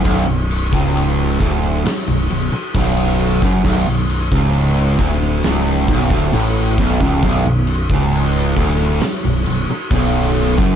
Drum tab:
CC |x-x-x-x-x-x-x-x-|x-x-x-x-x-x-x-x-|x-x-x-x-x-x-x-x-|
SD |--------o-------|--------o-----o-|--------o-------|
BD |o--o--o-----o--o|o--o--o---oo--oo|o--o--o-----o--o|